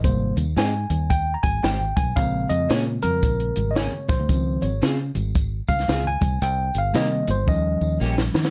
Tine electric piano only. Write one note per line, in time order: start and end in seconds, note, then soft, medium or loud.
0.03 0.43 C3 medium
0.03 0.43 G3 medium
0.03 0.43 A#3 medium
0.03 0.35 C5 medium
0.58 1.12 G#5 medium
1.10 1.33 G5 loud
1.34 1.43 A#5 medium
1.43 1.64 G#5 loud
1.63 1.98 G5 medium
1.97 2.17 G#5 loud
2.15 4.25 C#3 medium
2.15 4.25 G#3 medium
2.15 4.25 C4 medium
2.15 2.47 F5 loud
2.49 2.70 D#5 loud
2.70 2.85 C#5 medium
3.03 3.73 A#4 medium
3.71 3.76 D#5 medium
3.76 4.07 C#5 medium
4.09 4.64 C5 medium
4.28 4.68 D#3 medium
4.28 4.68 F3 soft
4.28 4.69 C4 medium
4.62 4.81 C#5 medium
5.69 6.08 F5 loud
6.07 6.40 G#5 loud
6.42 6.79 G5 loud
6.78 6.96 F5 medium
6.93 7.33 D#3 medium
6.93 7.33 G3 medium
6.93 7.34 A#3 medium
6.93 7.28 D#5 medium
7.31 7.49 C5 medium
7.47 8.50 F3 medium
7.47 8.50 G3 medium
7.47 8.50 C#4 medium
7.47 7.98 D#5 medium